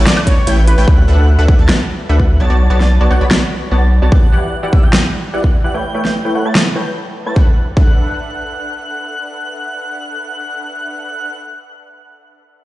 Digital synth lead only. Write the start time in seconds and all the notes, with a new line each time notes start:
0.47 G6
0.78 G6
0.88 F#6
1.08 F#6
1.39 F#6
1.48 F#6
1.59 A6
2.09 F#6
2.40 A6
2.50 A6
2.70 A6
3.01 A6
3.11 F#6
3.21 B6
3.72 A6
4.02 A6
4.12 F#6
4.32 F#6
4.63 F#6
4.73 E6
4.83 G6
5.34 F#6
5.64 F#6
5.74 G6
5.94 G6
6.25 G6
6.35 F#6
6.45 A6
6.76 G6
7.26 A6
7.36 F#6
7.77 F#6